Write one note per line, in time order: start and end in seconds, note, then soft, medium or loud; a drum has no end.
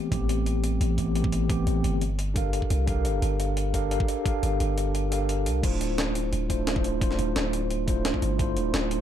0.00 0.10 E3 medium
0.00 0.11 A3 medium
0.00 0.12 B3 medium
0.00 0.13 C4 medium
0.00 0.14 G4 loud
0.10 0.79 A1 loud
0.10 0.95 E3 medium
0.10 0.96 A3 medium
0.10 0.96 B3 medium
0.10 0.97 C4 medium
0.10 0.97 G4 medium
0.10 kick loud
0.10 closed hi-hat medium
0.29 closed hi-hat medium
0.46 closed hi-hat medium
0.64 closed hi-hat medium
0.81 1.66 A1 medium
0.81 closed hi-hat medium
0.97 1.13 E3 medium
0.97 1.13 A3 medium
0.97 1.14 B3 medium
0.97 1.14 C4 medium
0.97 1.14 G4 medium
0.97 kick medium
0.97 closed hi-hat medium
1.15 1.47 E3 medium
1.15 1.48 A3 medium
1.15 1.48 B3 medium
1.15 1.48 C4 medium
1.15 1.48 G4 medium
1.15 closed hi-hat medium
1.24 kick loud
1.32 closed hi-hat medium
1.48 2.00 E3 medium
1.48 2.00 A3 medium
1.48 2.00 B3 medium
1.48 2.01 C4 medium
1.48 2.01 G4 loud
1.48 kick loud
1.48 closed hi-hat medium
1.67 1.83 A1 loud
1.67 closed hi-hat medium
1.84 2.61 G1 loud
1.84 closed hi-hat medium
2.01 closed hi-hat medium
2.19 closed hi-hat medium
2.34 2.85 D4 medium
2.34 2.85 G4 medium
2.34 2.86 A4 medium
2.34 2.86 A#4 medium
2.34 2.87 F5 medium
2.34 kick loud
2.34 closed hi-hat medium
2.53 closed hi-hat medium
2.62 kick medium
2.70 3.06 C2 loud
2.70 closed hi-hat medium
2.86 3.71 D4 medium
2.86 3.72 G4 medium
2.86 3.72 A4 medium
2.86 3.72 A#4 medium
2.86 3.73 F5 loud
2.86 kick loud
2.86 closed hi-hat medium
3.05 3.21 G1 loud
3.05 closed hi-hat medium
3.22 3.99 G1 loud
3.22 closed hi-hat medium
3.40 closed hi-hat medium
3.57 closed hi-hat medium
3.73 3.89 D4 medium
3.73 3.89 G4 medium
3.73 3.89 A4 medium
3.73 3.90 A#4 medium
3.73 3.90 F5 medium
3.73 kick medium
3.73 closed hi-hat medium
3.90 4.23 D4 medium
3.90 4.24 G4 medium
3.90 4.24 A4 medium
3.90 4.24 A#4 medium
3.90 4.24 F5 medium
3.90 closed hi-hat medium
4.00 kick medium
4.08 closed hi-hat medium
4.24 5.09 D4 medium
4.24 5.10 G4 medium
4.24 5.10 A4 medium
4.24 5.10 A#4 medium
4.24 5.11 F5 loud
4.24 kick loud
4.24 closed hi-hat medium
4.43 4.59 G1 loud
4.43 closed hi-hat medium
4.60 5.48 G1 loud
4.60 closed hi-hat medium
4.78 closed hi-hat loud
4.95 closed hi-hat medium
5.10 5.61 D4 medium
5.10 5.61 G4 medium
5.10 5.62 A4 medium
5.10 5.62 A#4 medium
5.10 5.62 F5 medium
5.10 closed hi-hat loud
5.29 closed hi-hat medium
5.46 5.62 C2 medium
5.46 closed hi-hat medium
5.62 6.31 D1 medium
5.62 6.47 A3 medium
5.62 6.47 D4 medium
5.62 6.48 E4 medium
5.62 6.48 F4 medium
5.62 6.49 C5 medium
5.62 kick loud
5.62 closed hi-hat medium
5.62 crash medium
5.81 closed hi-hat medium
5.98 snare loud
5.98 closed hi-hat medium
6.15 closed hi-hat medium
6.33 7.18 D1 medium
6.33 closed hi-hat medium
6.49 6.65 A3 medium
6.49 6.65 D4 medium
6.49 6.65 E4 medium
6.49 6.65 F4 medium
6.49 6.66 C5 medium
6.49 kick medium
6.49 closed hi-hat loud
6.66 6.99 A3 medium
6.66 6.99 D4 medium
6.66 7.00 E4 medium
6.66 7.00 F4 medium
6.66 7.00 C5 medium
6.66 snare loud
6.66 closed hi-hat medium
6.76 kick loud
6.84 closed hi-hat loud
7.00 7.85 A3 medium
7.00 7.85 D4 medium
7.00 7.86 E4 medium
7.00 7.86 F4 medium
7.00 7.87 C5 loud
7.00 kick loud
7.00 closed hi-hat medium
7.11 snare soft
7.19 7.34 D1 loud
7.19 closed hi-hat medium
7.36 8.13 D1 loud
7.36 snare loud
7.36 closed hi-hat medium
7.53 closed hi-hat medium
7.71 closed hi-hat medium
7.86 8.37 A3 medium
7.86 8.37 D4 medium
7.86 8.38 E4 medium
7.86 8.38 F4 medium
7.86 8.38 C5 loud
7.86 kick loud
7.86 closed hi-hat medium
8.05 snare loud
8.05 closed hi-hat medium
8.14 kick medium
8.22 8.58 G1 loud
8.22 closed hi-hat medium
8.38 9.01 A3 medium
8.38 9.01 D4 medium
8.38 9.01 E4 medium
8.38 9.01 F4 medium
8.38 9.01 C5 loud
8.38 kick loud
8.38 closed hi-hat medium
8.57 8.72 D1 loud
8.57 closed hi-hat medium
8.74 9.01 D1 loud
8.74 snare loud
8.74 closed hi-hat medium
8.91 closed hi-hat medium